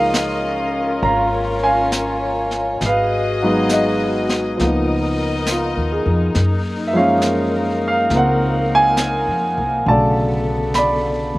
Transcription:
Already playing: C#2 F3 G#3 A#3 C#4 D#4 F4 A#4 D#5 F5
0.14 snare, hi-hat pedal
1.02 G#1 C#5 F5 A#5, brush sweep
1.64 F5 G#5
1.92 snare, hi-hat pedal
2.51 snare
2.81 G#1 F#4 G#4 D#5, brush sweep, snare
2.86 B4 F5
3.42 F#3 G#3 B3 D#4
3.69 snare, hi-hat pedal
3.74 D#5
4.29 snare
4.57 C#2 F3 A#3 D#4 A#4 D#5, brush sweep, snare
4.63 B3 D#4
5.46 F4, snare, hi-hat pedal
5.77 D#2
5.92 G#4
6.06 F2
6.34 F#2 A#3 A#4, brush sweep, snare
6.87 E5
6.93 F3 G#3 A#3 F5
6.97 C#4
7.22 snare, hi-hat pedal
7.88 F5
8.10 C#2 A#3, brush sweep, snare
8.14 C4 A#4 F#5
8.75 G#5
8.97 snare, hi-hat pedal
9.27 F2
9.58 C2
9.85 B1 D3 F#3 B3 A4 A5, brush sweep
9.89 C#3 A3 D5
10.74 D5 B5, snare, hi-hat pedal
11.35 D#2

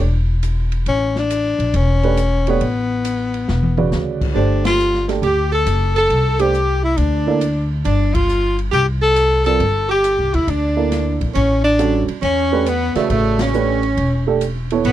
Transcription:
Already playing: D4
0.00 E1
0.43 hi-hat pedal, ride
0.72 ride
0.86 A1 C#4, ride
1.16 D4, snare
1.30 hi-hat pedal, ride
1.59 A#1, ride
1.74 E1 C#4, ride
2.03 A3 D4 G4 B4, ride
2.17 hi-hat pedal, ride
2.47 A3 B3 D4 G4 C#5, ride
2.61 A1, ride
3.05 hi-hat pedal, ride
3.34 ride
3.48 E1, snare
3.63 mid tom
3.77 C#3 F#4 B4 D5, mid tom
3.92 D2, snare, hi-hat pedal
4.21 kick, crash
4.34 G1 A3 D4 G4 C5
4.65 F4, snare, ride
4.79 hi-hat pedal
4.94 snare
5.08 A3 D4 G4 A4, snare, ride
5.22 D2 G4, ride
5.26 G4
5.52 A4
5.66 F#1, hi-hat pedal, ride
5.96 A4, ride
6.10 C2, ride
6.39 A3 D4 G4 C5, ride
6.54 hi-hat pedal
6.83 E4
6.97 D2 D4, ride
7.27 A#3 E4 A4 D5
7.41 hi-hat pedal, ride
7.85 G1 D4, ride
8.13 F4, kick, ride
8.29 hi-hat pedal
8.59 ride
8.71 C2 G4, ride
9.01 A4
9.16 hi-hat pedal, ride
9.44 G3 C4 F4 A4 A#4, ride
9.60 G1, ride
9.89 G4
10.04 hi-hat pedal, ride
10.19 C2
10.34 D2 E4, ride
10.47 D2 D4, ride
10.76 A#3 E4 A4 D5
10.92 snare, hi-hat pedal, ride
11.21 A#1, kick, ride
11.34 A1 C#4, ride
11.64 D4
11.79 G3 C#4 F#4 A4, hi-hat pedal, ride
12.08 muted upright bass stroke, ride
12.22 E2 C#4, ride
12.52 A3 D4 G4 B4
12.66 B3, hi-hat pedal, ride
12.95 C#3 A3 F#4 B4 D5, muted upright bass stroke, snare, ride
13.10 A1 A3, ride
13.39 C#4, snare, ride
13.54 A3 D4 G4 B4, hi-hat pedal
13.83 ride
13.97 E1, ride
14.27 A3 D4 G4 A4
14.41 hi-hat pedal, ride
14.70 B3 E4 A4 C#5, ride
14.85 A1 B3, ride

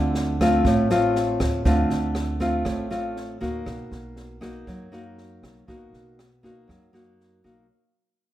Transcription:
Already playing: D2 D3 A3 C4 F4
0.15 snare
0.40 A3 C4 F4, kick, cross-stick, snare
0.65 A1 A2, kick, snare
0.90 A3 C4 F4, snare
1.16 snare
1.40 D2, kick, cross-stick, snare
1.65 D2 D3 A3 C4 F4, kick, snare
1.90 D2, snare
2.15 cross-stick, snare
2.40 A3 C4 F4, kick, snare
2.65 A1 A2, kick, cross-stick, snare
2.90 A3 C4 F4, snare
3.17 snare
3.41 D2 A#3 D#4 F#4, kick, snare
3.66 B1 B2, kick, cross-stick, snare
3.91 B1, snare
4.16 snare
4.41 A#3 D#4 F#4, kick, cross-stick, snare
4.67 F#2 F#3, kick, snare
4.92 A#3 D#4 F#4, snare
5.18 snare
5.43 B1, kick, cross-stick, snare
5.67 B1 B2 A#3 D#4 F#4, kick, snare
5.92 B1, snare
6.19 cross-stick, snare
6.43 A#3 D#4 F#4, kick, snare
6.68 F#2 F#3, kick, cross-stick, snare
6.93 A#3 D#4 F#4, snare
7.21 snare
7.44 B1 A#3 D#4 F#4, kick, snare

